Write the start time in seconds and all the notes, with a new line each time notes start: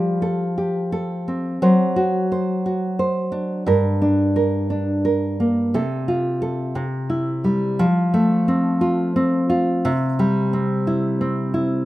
Already playing: F3 G3 G4 A4
0.22 A4
0.58 G4
0.92 A4
1.28 C4
1.62 F#3 C5
1.96 F#4
2.32 C5
2.66 F#4
2.99 C5
3.32 D4
3.66 G2 A#4
4.02 D4
4.36 A#4
4.70 D4
5.05 A#4
5.40 A#3
5.74 C3 A4
6.08 F4
6.42 A4
6.75 C3
7.10 E4
7.44 G3
7.79 F3
8.14 A3
8.48 C4
8.81 F4
9.16 C4
9.50 F4
9.85 C3
10.19 G3
10.53 C4
10.87 E4
11.21 C4
11.54 E4